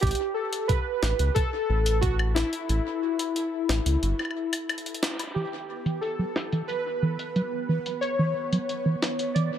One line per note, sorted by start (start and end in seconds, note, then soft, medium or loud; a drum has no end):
0.01 0.13 A1 loud
0.01 0.36 G4 loud
0.01 kick loud
0.01 closed hi-hat medium
0.07 closed hi-hat soft
0.11 closed hi-hat medium
0.15 closed hi-hat medium
0.34 0.69 A4 loud
0.53 closed hi-hat medium
0.68 1.31 B4 loud
0.68 kick loud
0.68 closed hi-hat soft
1.02 1.13 A1 medium
1.02 snare loud
1.19 1.30 C#2 medium
1.19 closed hi-hat medium
1.34 2.04 A4 loud
1.34 kick loud
1.34 closed hi-hat soft
1.69 2.43 A1 medium
1.86 closed hi-hat medium
2.01 2.15 F#4 loud
2.01 kick loud
2.01 closed hi-hat medium
2.19 high woodblock medium
2.34 4.65 E4 medium
2.34 snare loud
2.53 closed hi-hat medium
2.69 2.80 A1 loud
2.69 closed hi-hat medium
3.19 closed hi-hat medium
3.36 closed hi-hat medium
3.69 3.80 A1 medium
3.69 snare loud
3.86 3.97 C#2 medium
3.86 closed hi-hat medium
4.02 4.13 G1 medium
4.02 closed hi-hat medium
4.19 high woodblock medium
4.25 high woodblock soft
4.31 high woodblock soft
4.53 closed hi-hat medium
4.53 high woodblock medium
4.69 closed hi-hat soft
4.69 high woodblock medium
4.78 closed hi-hat soft
4.86 closed hi-hat soft
4.95 closed hi-hat soft
5.03 snare loud
5.19 closed hi-hat medium
5.19 high woodblock soft
5.34 5.46 E3 medium
5.34 9.59 B3 medium
5.34 6.04 G4 medium
5.34 9.59 B4 medium
5.34 closed hi-hat soft
5.47 closed hi-hat soft
5.58 closed hi-hat soft
5.86 6.01 E3 loud
5.86 closed hi-hat medium
6.01 6.71 A4 medium
6.01 closed hi-hat soft
6.19 6.25 F#3 loud
6.36 snare loud
6.52 6.63 E3 medium
6.52 closed hi-hat medium
6.68 8.06 B4 medium
6.68 closed hi-hat soft
7.02 7.18 E3 loud
7.19 closed hi-hat medium
7.36 7.42 F#3 loud
7.36 closed hi-hat medium
7.69 7.79 E3 medium
7.86 closed hi-hat medium
8.01 9.39 C#5 loud
8.01 closed hi-hat medium
8.19 8.34 E3 loud
8.52 8.58 F#3 loud
8.52 closed hi-hat medium
8.69 closed hi-hat medium
8.86 8.96 E3 medium
9.02 snare loud
9.19 closed hi-hat medium
9.34 9.51 E3 loud
9.34 9.59 D5 medium
9.34 closed hi-hat medium